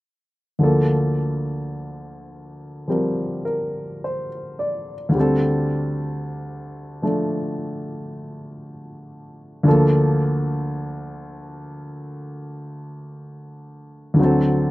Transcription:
grand piano
0.59 D2 D3 F3
0.63 A#3 A4
2.88 F3 G3 C4 A#4
3.45 A#4
4.04 C5
4.59 D5
5.09 D2 D3
5.15 G3 C4
5.20 A4
7.02 F3 A3 D4 A4
9.63 D2 D3 F3
9.68 A#3 A4
14.14 D2 D3
14.19 F#3 C4
14.24 A4

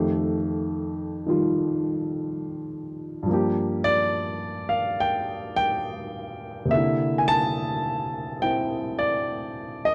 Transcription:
grand piano
Already playing: F2 D#3 A3 G4 F5
1.27 D#3 G3 F4
3.23 G2 F3
3.30 A#3 G4
3.84 D5
4.69 F5
5.00 G5
5.56 G5
6.65 C3 A#3
6.71 D3 E5
6.77 E4
7.18 G#5
7.28 A5
8.40 C4 E4 G5
8.99 D5
9.85 D#5

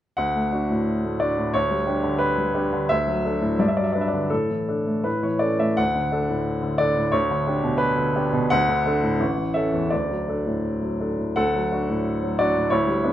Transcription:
grand piano
0.17 D2 F#5
0.35 A3
0.53 D4 F#4
0.70 A2
1.04 A3
1.20 D4 F#4 D5
1.38 A2
1.54 D2 C#5
1.71 G3
1.87 D4 G4
2.03 D3
2.19 B4
2.37 G3
2.54 D4 G4
2.72 D3
2.89 D2 E5
3.08 F#3
3.25 D4 A4
3.42 A2
3.59 G2 D5
3.68 E5
3.77 F#3 D5
3.83 E5
3.93 D4 B4 D5
4.01 E5
4.08 D5
4.13 D3
4.30 A2 A4
4.50 E3
4.68 D4 A4
4.86 A3
5.04 A2 B4
5.23 E3 C#5
5.39 C#4 A4 D5
5.59 A3 E5
5.77 D2 F#5
5.95 D3
6.12 D4 A4
6.29 A2
6.62 D3
6.78 D4 A4 D5
6.97 A2
7.12 D2 C#5
7.31 D3
7.47 D4 G4
7.63 B2
7.78 B4
7.97 D3
8.16 D4 G4
8.33 B2
8.50 D2 F#5
8.69 D3
8.86 D4 A4
9.03 A2
9.20 A1
9.37 E3
9.54 C#4 A4 E5
9.73 E2
9.90 D2 D5
10.09 F#3
10.28 D4 A4
10.46 A2
10.82 F#3
11.00 D4 A4
11.18 A2
11.36 D2 A4 F#5
11.54 F#3
11.72 D4 F#4
11.90 A2
12.23 F#3
12.39 D4 F#4 D5
12.56 A2
12.70 D2 E4 C#5
12.87 G3
13.04 B3 D4

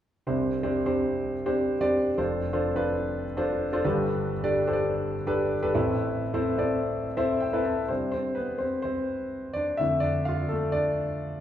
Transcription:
grand piano
0.27 C2 C3 C4 D4 G4 C5
0.63 C4 D4 G4 C5
0.86 C4 D4 G4 C5
1.46 C4 D4 G4 C5
1.81 C4 D4 G4 D5
2.18 F1 F2 D4 F4 A4 C5
2.53 D4 F4 A4 C5
2.76 D4 F4 A4 B4
3.37 D4 F4 A4 C5
3.73 D4 F4 A4 C5
3.84 G1 G2 D4 G4 A4 B4
4.44 D4 G4 A4 D5
4.67 D4 G4 A4 C5
4.73 D5
5.27 D4 G4 A4 B4
5.62 D4 G4 A4 B4
5.74 A1 A2 C4 E4 A4 B4
6.34 C4 E4 A4 C5
6.58 C4 E4 A4 D5
7.17 C4 E4 A4 C5 E5
7.40 G5
7.53 C4 E4 A4 B4
7.65 A5
7.88 C3 G3 C4 D4 C5
8.12 C4 C5
8.35 B3 B4
8.58 C4 C5
8.82 C4 C5
9.53 D4 D5
9.77 F2 D3 A3 E4 E5
10.00 D4 D5
10.25 F4 F5
10.49 A3 A4
10.72 D4 D5

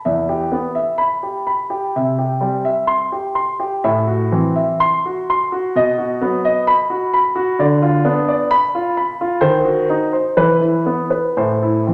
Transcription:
grand piano
0.05 E2 E5
0.29 G4
0.52 B3
0.75 E5
0.98 B5
1.23 G4
1.47 B5
1.70 G4
1.96 C3 E5
2.19 G4
2.40 G3 C4
2.65 E5
2.87 C6
3.12 G4
3.35 C6
3.60 G4
3.84 A2 E5
4.07 F#4
4.32 E3 C4
4.56 E5
4.80 C6
5.06 F#4
5.30 C6
5.52 F#4
5.75 B2 D#5
5.98 F#4
6.21 F#3 B3
6.45 D#5
6.67 B5
6.90 F#4
7.14 B5
7.36 F#4
7.59 D3 D5
7.82 F4
8.04 B3 D4
8.29 D5
8.51 B5
8.75 F4
8.97 B5
9.21 F4
9.41 D#3 C5
9.65 F#4
9.90 D#4
10.13 C5
10.37 E3 B4
10.61 E4
10.86 B3
11.10 B4
11.37 A2 C5
11.63 E4
11.87 E3 C4

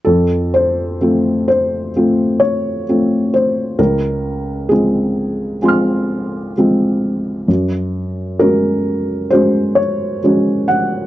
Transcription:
felt piano
0.05 F2 A4
0.54 C5
1.01 A3 C4 F4
1.48 C5
1.96 A3 C4 F4
2.40 C#5
2.89 A3 C4 F4
3.34 C5
3.79 C#2 A#4
4.69 G#3 C4 F4 G#4
5.62 G#3 C4 F4 G#5 C6
5.68 F6
6.58 G#3 C4 F4
7.48 F#2
8.39 G#3 C#4 F#4 A#4
9.31 G#3 C#4 F#4 C5
9.75 C#5
10.24 G#3 C#4 F#4
10.68 F#5

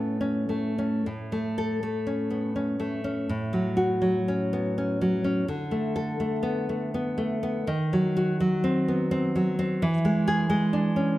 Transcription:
nylon-string guitar
Already playing: A2 A3 B3 C#4
0.21 C#4
0.49 A3
0.78 C#4
1.06 A2
1.32 A3
1.58 A4
1.83 A3
2.07 C#4
2.30 B3
2.56 C#4
2.80 A3
3.04 C#4
3.29 A2
3.53 F#3
3.77 F#4
4.02 F#3
4.28 C#4
4.53 B3
4.78 C#4
5.01 F#3
5.24 C#4
5.48 D3
5.71 A3
5.96 A4
6.20 A3
6.43 B3
6.69 A3
6.94 B3
7.18 A3
7.43 B3
7.67 D#3
7.93 F#3
8.17 F#4
8.40 F#3
8.64 C4
8.88 B3
9.11 C4
9.36 F#3
9.59 C4
9.82 E3
10.05 G#3
10.28 G#4
10.50 G#3
10.73 D4
10.96 C#4

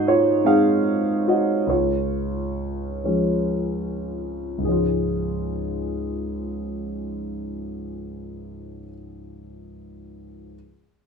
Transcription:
grand piano
Already playing: G#2 D#4 F#4 C5 D#5
0.07 F4 C#5
0.44 G#3 C4 D#4 G#4 F5
1.28 F#4 D#5
1.67 C#2 F4 C#5
3.04 F3 G#3 C#4
4.58 C#2 G#2
4.63 F3 G#3 G#4
4.69 C#4 F4

